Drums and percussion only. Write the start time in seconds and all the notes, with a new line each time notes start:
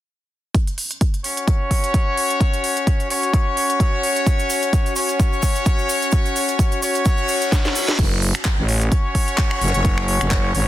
0.55 kick, closed hi-hat
0.67 closed hi-hat
0.78 open hi-hat
0.91 closed hi-hat
1.01 kick, closed hi-hat
1.14 closed hi-hat
1.24 open hi-hat
1.37 closed hi-hat
1.48 kick, closed hi-hat
1.71 kick, open hi-hat
1.84 closed hi-hat
1.94 kick, closed hi-hat
2.17 open hi-hat
2.30 closed hi-hat
2.41 kick, closed hi-hat
2.54 closed hi-hat
2.64 open hi-hat
2.77 closed hi-hat
2.87 kick, closed hi-hat
3.00 closed hi-hat
3.10 open hi-hat
3.23 closed hi-hat
3.34 kick, closed hi-hat
3.57 open hi-hat
3.70 closed hi-hat
3.80 kick, closed hi-hat
4.03 open hi-hat
4.16 closed hi-hat
4.27 kick, closed hi-hat, cabasa
4.39 closed hi-hat, cabasa
4.50 open hi-hat, cabasa
4.62 closed hi-hat, cabasa
4.73 kick, closed hi-hat, cabasa
4.86 closed hi-hat, cabasa
4.96 open hi-hat, cabasa
5.09 closed hi-hat, cabasa
5.20 kick, closed hi-hat, cabasa
5.33 cabasa
5.42 kick, open hi-hat, cabasa
5.56 closed hi-hat, cabasa
5.66 kick, closed hi-hat, cabasa
5.79 cabasa
5.89 open hi-hat, cabasa
6.02 closed hi-hat, cabasa
6.11 kick, closed hi-hat, cabasa
6.26 closed hi-hat, cabasa
6.36 open hi-hat, cabasa
6.48 closed hi-hat, cabasa
6.59 kick, closed hi-hat, cabasa
6.72 closed hi-hat, cabasa
6.82 open hi-hat, cabasa
6.95 closed hi-hat, cabasa
7.05 kick, closed hi-hat, cabasa
7.17 cabasa
7.28 open hi-hat, cabasa
7.41 closed hi-hat, cabasa
7.52 kick, snare, closed hi-hat, cabasa
7.65 snare, cabasa
7.75 open hi-hat, cabasa
7.88 snare, closed hi-hat, cabasa
7.99 kick, closed hi-hat, crash
8.22 open hi-hat
8.35 finger snap, closed hi-hat
8.45 kick, clap
8.68 open hi-hat
8.81 closed hi-hat
8.92 kick, closed hi-hat
9.15 kick, open hi-hat
9.28 closed hi-hat
9.38 kick, clap, closed hi-hat
9.51 finger snap
9.61 open hi-hat
9.68 closed hi-hat
9.74 closed hi-hat
9.85 kick, closed hi-hat
9.98 finger snap
10.08 open hi-hat
10.21 finger snap, closed hi-hat
10.31 kick, clap
10.55 open hi-hat